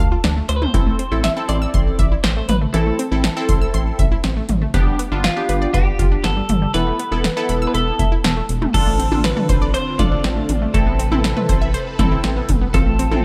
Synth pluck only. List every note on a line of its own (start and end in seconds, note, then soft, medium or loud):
0.12 0.20 F4 medium
0.24 0.32 D4 medium
0.37 0.45 A3 medium
0.62 0.70 A3 medium
0.74 0.82 E3 loud
0.87 0.95 A3 medium
0.99 1.07 C4 medium
1.12 1.20 E4 medium
1.37 1.45 A5 medium
1.49 1.57 C6 medium
1.62 1.70 E6 medium
1.74 1.82 C6 loud
1.99 2.07 E5 medium
2.12 2.20 E4 medium
2.24 2.32 C4 medium
2.37 2.45 A3 medium
2.62 2.70 A3 medium
2.74 2.82 E3 medium
2.87 2.95 A3 medium
2.99 3.07 C4 medium
3.12 3.20 E4 medium
3.37 3.45 A5 medium
3.49 3.57 C6 medium
3.62 3.70 E6 medium
3.74 3.82 C6 loud
3.99 4.07 E5 medium
4.12 4.20 E4 medium
4.24 4.32 C4 medium
4.37 4.45 A3 medium
4.62 4.70 A3 medium
4.74 4.82 F3 medium
4.87 4.95 G3 medium
4.99 5.07 B3 medium
5.12 5.20 D4 medium
5.37 5.45 G4 medium
5.49 5.57 B4 medium
5.62 5.70 D5 medium
5.74 5.82 B4 loud
5.99 6.07 F4 medium
6.12 6.20 D4 medium
6.24 6.32 B3 medium
6.37 6.45 G3 medium
6.62 6.70 G3 medium
6.74 6.83 E3 medium
6.87 6.95 A3 medium
7.00 7.08 B3 medium
7.12 7.20 E4 medium
7.37 7.45 A5 medium
7.49 7.58 B5 medium
7.62 7.70 E6 medium
7.75 7.83 B5 loud
7.99 8.07 E5 medium
8.12 8.20 E4 medium
8.24 8.32 B3 medium
8.37 8.45 A3 medium
8.62 8.70 A3 medium
8.74 8.82 F3 medium
8.87 8.95 A3 medium
8.99 9.07 C4 medium
9.12 9.20 D4 medium
9.37 9.45 A4 medium
9.49 9.57 C5 medium
9.62 9.70 D5 medium
9.74 9.82 C5 loud
9.99 10.07 F4 medium
10.12 10.20 D4 medium
10.24 10.32 C4 medium
10.37 10.45 A3 medium
10.62 10.70 A3 medium
10.74 10.82 A3 loud
10.87 10.95 B3 medium
10.99 11.07 C4 medium
11.12 11.20 E4 medium
11.37 11.45 B4 medium
11.49 11.57 C5 medium
11.62 11.70 E5 medium
11.74 11.82 C5 loud
11.99 12.07 A4 medium
12.12 12.20 E4 medium
12.24 12.32 C4 medium
12.37 12.45 B3 medium
12.61 12.70 B3 medium
12.74 12.82 F3 medium
12.87 12.95 A3 medium
12.99 13.07 C4 medium
13.12 13.20 E4 medium